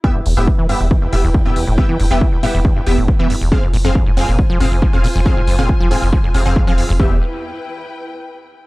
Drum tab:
HH |-o-o-o-o|-o-o-o-o|-o-o-o-o|-o-o-o-o|
BD |o-o-o-o-|o-o-o-o-|o-o-o-o-|o-o-o-o-|

HH |--------|
BD |o-------|